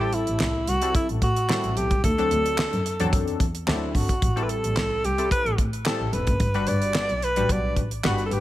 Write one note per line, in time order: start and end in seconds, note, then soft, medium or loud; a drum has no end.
0.00 0.55 G3 medium
0.00 0.55 C4 medium
0.00 0.55 E4 medium
0.00 0.15 G4 loud
0.00 0.55 A4 medium
0.13 0.70 E4 loud
0.13 closed hi-hat medium
0.27 0.38 A1 medium
0.27 closed hi-hat medium
0.40 0.63 C2 medium
0.40 snare loud
0.40 clap medium
0.67 0.90 C2 medium
0.67 0.95 F#4 loud
0.67 closed hi-hat medium
0.82 1.27 G3 medium
0.82 1.27 C4 medium
0.82 1.27 E4 medium
0.82 1.27 A4 medium
0.82 closed hi-hat medium
0.95 1.08 E4 medium
0.95 kick loud
0.95 closed hi-hat medium
1.09 1.20 A1 loud
1.09 closed hi-hat soft
1.22 1.45 A2 loud
1.22 1.78 F#4 loud
1.22 kick loud
1.22 closed hi-hat medium
1.36 closed hi-hat medium
1.49 1.95 G3 medium
1.49 1.95 C4 medium
1.49 1.95 E4 medium
1.49 1.95 A4 medium
1.49 snare loud
1.49 clap medium
1.64 1.74 A1 loud
1.64 closed hi-hat soft
1.76 1.89 B1 medium
1.76 2.04 G4 medium
1.76 closed hi-hat medium
1.91 2.02 C2 medium
1.91 kick medium
1.91 closed hi-hat soft
2.04 2.26 D2 loud
2.04 3.09 A4 loud
2.04 kick loud
2.04 closed hi-hat medium
2.18 2.73 F#3 medium
2.18 2.73 C4 medium
2.18 2.73 D4 medium
2.18 2.73 A4 loud
2.18 closed hi-hat soft
2.31 2.54 D2 loud
2.31 closed hi-hat medium
2.46 closed hi-hat medium
2.58 snare loud
2.58 clap loud
2.72 2.83 F#2 medium
2.72 closed hi-hat soft
2.86 closed hi-hat medium
3.00 3.11 E2 loud
3.00 3.45 F#3 loud
3.00 3.45 C4 medium
3.00 3.45 D4 medium
3.00 3.45 A4 loud
3.00 closed hi-hat medium
3.13 3.36 F#2 loud
3.13 kick loud
3.13 closed hi-hat loud
3.28 closed hi-hat soft
3.40 3.63 E2 medium
3.40 kick loud
3.40 closed hi-hat medium
3.55 closed hi-hat medium
3.67 3.90 D2 loud
3.67 4.13 F#3 medium
3.67 4.13 C4 medium
3.67 4.14 D4 medium
3.67 3.97 E4 medium
3.67 4.14 A4 medium
3.67 snare loud
3.67 clap medium
3.95 4.17 G1 loud
3.95 4.45 F#4 medium
3.95 kick medium
3.95 open hi-hat medium
4.09 kick medium
4.09 closed hi-hat medium
4.22 4.45 A1 loud
4.22 kick loud
4.22 closed hi-hat medium
4.36 4.91 G3 medium
4.36 4.91 C4 medium
4.36 4.91 E4 medium
4.36 4.91 A4 medium
4.36 closed hi-hat soft
4.43 4.51 B4 medium
4.49 5.06 A4 loud
4.49 closed hi-hat medium
4.63 4.74 A1 loud
4.63 closed hi-hat medium
4.76 4.99 C2 medium
4.76 snare loud
4.76 clap medium
5.03 5.26 C2 medium
5.03 5.31 G4 loud
5.03 closed hi-hat medium
5.18 5.63 G3 medium
5.18 5.63 C4 medium
5.18 5.63 E4 medium
5.18 5.64 A4 medium
5.18 closed hi-hat medium
5.31 5.57 B4 loud
5.31 kick loud
5.31 closed hi-hat loud
5.45 5.56 A1 medium
5.45 closed hi-hat soft
5.58 5.81 A2 loud
5.58 kick loud
5.58 closed hi-hat medium
5.73 closed hi-hat medium
5.86 6.32 G3 medium
5.86 6.32 C4 medium
5.86 6.32 E4 medium
5.86 6.15 A4 medium
5.86 6.32 A4 loud
5.86 snare loud
5.86 clap medium
6.00 6.11 A1 medium
6.13 6.25 E1 medium
6.13 6.69 B4 medium
6.13 closed hi-hat medium
6.27 6.38 F#1 medium
6.27 kick loud
6.27 closed hi-hat medium
6.40 6.63 G1 loud
6.40 kick loud
6.40 closed hi-hat medium
6.54 7.09 G3 medium
6.54 7.09 D4 medium
6.54 7.10 F#4 medium
6.54 7.10 B4 medium
6.54 closed hi-hat soft
6.67 6.90 G1 loud
6.67 7.25 D5 loud
6.67 closed hi-hat medium
6.82 closed hi-hat medium
6.94 snare loud
6.94 clap loud
7.09 7.20 B1 medium
7.09 closed hi-hat soft
7.22 7.53 B4 loud
7.22 closed hi-hat medium
7.36 7.47 A1 medium
7.36 7.82 G3 medium
7.36 7.82 D4 medium
7.36 7.82 F#4 medium
7.36 7.82 B4 medium
7.36 closed hi-hat medium
7.49 7.72 B1 loud
7.49 7.78 D5 medium
7.49 kick loud
7.49 closed hi-hat medium
7.76 7.99 A1 loud
7.76 kick medium
7.76 closed hi-hat medium
7.91 closed hi-hat medium
8.04 8.27 G1 loud
8.04 8.40 G3 medium
8.04 8.40 D4 medium
8.04 8.40 F#4 medium
8.04 8.24 F#4 medium
8.04 8.40 B4 loud
8.04 snare loud
8.04 clap medium
8.18 closed hi-hat soft
8.26 8.34 A4 medium
8.31 8.40 G1 medium
8.31 8.40 G4 loud
8.31 closed hi-hat medium